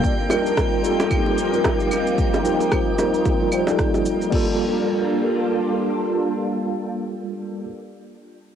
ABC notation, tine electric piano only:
X:1
M:4/4
L:1/16
Q:"Swing 16ths" 1/4=112
K:Gm
V:1 name="Tine electric piano"
z2 [G,EFB]4 [G,EFA]4- [G,EFA] [G,EFB]4- [G,EFB]- | [G,EFB]2 [G,EFB]4 [G,EFB]3 [G,EFB] [G,EFc] [G,EFA]4- [G,EFA] | [G,B,FA]16- | [G,B,FA]16 |]